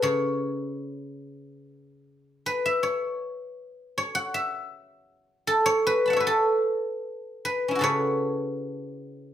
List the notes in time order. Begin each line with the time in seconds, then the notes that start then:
Already playing: A4 B4
0.02 C#3 C#5
2.46 B4
2.66 E5
2.83 C#5
3.98 C#5
4.15 F#5
4.34 E5
5.47 A4
5.66 C#5
5.87 B4
6.06 A5 B5
6.10 E5 F#5
6.17 B4 C#5
6.27 A4
7.45 B4
7.68 C#4 E4
7.75 F#4 A4
7.81 C#3 B4 C#5